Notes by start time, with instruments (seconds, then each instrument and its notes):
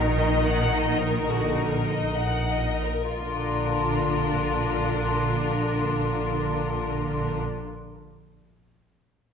Already playing: double bass section A#1, cello section D#3, viola section D#4, violin section A#4
0.19 violin section D#5
0.46 violin section F#5
0.72 violin section D#5
0.99 violin section A#4
1.26 cello section D3, violin section F#4
1.56 violin section A#4
1.86 violin section D#5
2.17 violin section F#5
2.51 violin section D#5
2.84 violin section A#4
3.15 double bass section A#1, cello section D3, viola section D4, violin section F4 A#4